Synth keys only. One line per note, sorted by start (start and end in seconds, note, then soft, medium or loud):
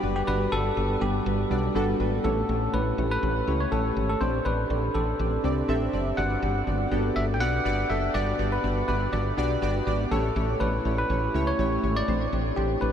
0.00 0.28 G2 medium
0.00 0.03 G3 loud
0.00 0.20 G3 medium
0.00 0.03 B3 medium
0.00 0.20 B3 medium
0.00 0.03 D4 medium
0.00 0.20 D4 medium
0.00 0.04 F#4 medium
0.00 0.20 F#4 medium
0.00 0.04 B4 loud
0.00 0.20 B4 medium
0.00 1.51 D5 loud
0.27 0.98 G2 medium
0.27 0.44 G3 medium
0.27 0.45 B3 medium
0.27 0.45 D4 medium
0.27 0.45 F#4 medium
0.27 0.45 B4 loud
0.52 0.69 G3 medium
0.52 0.69 B3 medium
0.52 0.69 D4 medium
0.52 0.70 F#4 medium
0.52 0.70 A4 medium
0.77 0.94 G3 medium
0.77 0.94 B3 medium
0.77 0.94 D4 medium
0.77 0.94 F#4 medium
0.77 0.94 B4 medium
1.01 1.18 G3 medium
1.01 1.18 B3 medium
1.01 1.18 D4 medium
1.01 1.19 F#4 medium
1.01 1.19 B4 medium
1.25 1.43 G3 medium
1.25 1.43 B3 medium
1.25 1.43 D4 medium
1.25 1.43 F#4 medium
1.25 1.43 B4 medium
1.50 1.67 G3 loud
1.50 1.67 B3 medium
1.50 1.68 D4 medium
1.50 1.68 F#4 medium
1.50 1.68 D5 loud
1.75 1.92 G3 loud
1.75 1.92 B3 loud
1.75 1.92 D4 loud
1.75 1.92 F#4 loud
1.75 1.93 A4 loud
2.00 2.17 G3 medium
2.00 2.17 B3 medium
2.00 2.17 D4 medium
2.00 2.17 F#4 medium
2.00 2.17 B4 loud
2.24 2.94 A2 medium
2.24 2.41 A3 medium
2.24 2.41 C#4 medium
2.24 2.42 E4 medium
2.24 2.42 G4 medium
2.24 2.42 C#5 loud
2.49 2.66 A3 medium
2.49 2.66 C#4 medium
2.49 2.66 E4 medium
2.49 2.66 G4 medium
2.49 2.66 C#5 medium
2.73 2.90 A3 medium
2.73 2.90 C#4 medium
2.73 2.91 E4 medium
2.73 2.91 G4 medium
2.73 2.91 C#5 medium
2.98 3.15 A3 medium
2.98 3.15 C#4 medium
2.98 3.15 E4 medium
2.98 3.15 G4 medium
2.98 3.16 C#5 medium
3.22 3.40 A3 medium
3.22 3.40 C#4 medium
3.22 3.40 E4 medium
3.22 3.40 G4 medium
3.22 3.40 C#5 medium
3.47 3.64 A3 loud
3.47 3.64 C#4 medium
3.47 3.64 E4 medium
3.47 3.65 G4 loud
3.47 3.65 C#5 loud
3.72 3.89 A3 loud
3.72 3.89 C#4 medium
3.72 3.89 E4 medium
3.72 3.89 G4 medium
3.72 3.89 C#5 loud
3.96 4.13 A3 medium
3.96 4.13 C#4 medium
3.96 4.14 E4 medium
3.96 4.14 G4 medium
3.96 4.14 C#5 medium
4.21 4.91 A2 medium
4.21 4.38 C4 medium
4.21 4.38 D4 medium
4.21 4.38 G4 medium
4.21 4.38 A4 medium
4.21 4.39 D5 loud
4.45 4.62 C4 medium
4.45 4.63 D4 medium
4.45 4.63 G4 medium
4.45 4.63 A4 medium
4.45 4.63 D5 medium
4.70 4.87 C4 medium
4.70 4.87 D4 medium
4.70 4.87 G4 medium
4.70 4.87 A4 medium
4.70 4.88 D5 medium
4.95 5.12 C4 medium
4.95 5.12 D4 medium
4.95 5.12 G4 medium
4.95 5.12 A4 medium
4.95 5.12 D5 medium
5.19 5.36 C4 medium
5.19 5.36 D4 medium
5.19 5.37 G4 medium
5.19 5.37 A4 medium
5.19 5.37 D5 medium
5.44 5.61 C4 loud
5.44 5.61 D4 medium
5.44 5.61 G4 medium
5.44 5.61 A4 medium
5.44 5.61 D5 loud
5.68 5.85 C4 loud
5.68 5.86 D4 loud
5.68 5.86 G4 loud
5.68 5.86 A4 loud
5.68 5.86 E5 loud
5.93 6.10 C4 medium
5.93 6.10 D4 medium
5.93 6.10 G4 medium
5.93 6.11 A4 medium
5.93 6.11 D5 loud
6.18 6.88 G2 medium
6.18 6.35 B3 medium
6.18 6.35 D4 medium
6.18 6.35 F#4 medium
6.18 6.35 G4 medium
6.18 6.35 D5 loud
6.42 6.59 B3 medium
6.42 6.59 D4 medium
6.42 6.60 F#4 medium
6.42 6.60 G4 medium
6.42 6.60 D5 medium
6.67 6.84 B3 medium
6.67 6.84 D4 medium
6.67 6.84 F#4 medium
6.67 6.84 G4 medium
6.67 6.84 D5 medium
6.91 7.08 B3 medium
6.91 7.09 D4 medium
6.91 7.09 F#4 medium
6.91 7.09 G4 medium
6.91 7.09 A4 loud
7.16 7.33 B3 medium
7.16 7.33 D4 medium
7.16 7.33 F#4 medium
7.16 7.33 G4 medium
7.16 7.34 D5 medium
7.40 7.58 B3 loud
7.40 7.58 D4 medium
7.40 7.58 F#4 medium
7.40 7.58 G4 medium
7.40 7.58 D5 loud
7.65 7.82 B3 loud
7.65 7.82 D4 medium
7.65 7.82 F#4 medium
7.65 7.83 G4 medium
7.65 7.83 D5 loud
7.90 8.07 B3 medium
7.90 8.07 D4 medium
7.90 8.07 F#4 medium
7.90 8.07 G4 medium
7.90 8.07 A4 medium
8.14 8.84 G2 medium
8.14 8.31 B3 medium
8.14 8.31 D4 medium
8.14 8.32 F#4 medium
8.14 8.32 G4 medium
8.14 8.32 D5 loud
8.39 8.56 B3 medium
8.39 8.56 D4 medium
8.39 8.56 F#4 medium
8.39 8.56 G4 medium
8.39 8.56 D5 medium
8.63 8.80 B3 medium
8.63 8.81 D4 medium
8.63 8.81 F#4 medium
8.63 8.81 G4 medium
8.63 8.81 D5 medium
8.88 9.05 B3 medium
8.88 9.05 D4 medium
8.88 9.05 F#4 medium
8.88 9.06 G4 medium
8.88 9.06 D5 medium
9.12 9.30 B3 medium
9.12 9.30 D4 medium
9.12 9.30 F#4 medium
9.12 9.30 G4 medium
9.12 9.30 D5 medium
9.37 9.54 B3 loud
9.37 9.54 D4 loud
9.37 9.55 F#4 medium
9.37 9.55 G4 medium
9.37 9.55 D5 loud
9.62 9.79 B3 loud
9.62 9.79 D4 medium
9.62 9.79 F#4 medium
9.62 9.79 G4 medium
9.62 9.80 D5 loud
9.86 10.04 B3 medium
9.86 10.04 D4 medium
9.86 10.04 F#4 medium
9.86 10.04 G4 medium
9.86 10.04 D5 loud
10.11 10.81 A2 medium
10.11 10.28 A3 medium
10.11 10.28 C#4 medium
10.11 10.28 E4 medium
10.11 10.29 G4 medium
10.11 10.29 C#5 loud
10.36 10.53 A3 medium
10.36 10.53 C#4 medium
10.36 10.53 E4 medium
10.36 10.53 G4 medium
10.36 10.53 C#5 medium
10.60 10.77 A3 medium
10.60 10.78 C#4 medium
10.60 10.78 E4 medium
10.60 10.78 G4 medium
10.60 10.78 C#5 medium
10.85 11.02 A3 medium
10.85 11.02 C#4 medium
10.85 11.02 E4 medium
10.85 11.02 G4 medium
10.85 11.03 C#5 medium
11.10 11.27 A3 medium
11.10 11.27 C#4 medium
11.10 11.27 E4 medium
11.10 11.27 G4 medium
11.10 11.27 C#5 medium
11.34 11.51 A3 loud
11.34 11.51 C#4 loud
11.34 11.51 E4 medium
11.34 11.52 G4 medium
11.34 11.52 C#5 loud
11.59 11.76 A3 medium
11.59 11.76 C#4 loud
11.59 11.76 E4 medium
11.59 11.76 G4 medium
11.59 11.76 C#5 loud
11.83 12.00 A3 medium
11.83 12.00 C#4 medium
11.83 12.01 E4 medium
11.83 12.01 G4 medium
11.83 12.01 C#5 medium
12.08 12.78 A2 medium
12.08 12.25 A3 medium
12.08 12.25 C4 medium
12.08 12.25 D4 medium
12.08 12.25 G4 medium
12.08 12.26 C5 loud
12.32 12.49 A3 medium
12.32 12.50 C4 medium
12.32 12.50 D4 medium
12.32 12.50 G4 medium
12.32 12.50 C5 medium
12.57 12.74 A3 medium
12.57 12.74 C4 medium
12.57 12.74 D4 medium
12.57 12.74 G4 medium
12.57 12.75 C5 medium
12.81 12.92 A3 medium
12.81 12.92 C4 medium
12.81 12.92 D4 medium
12.81 12.92 G4 medium
12.81 12.92 B4 medium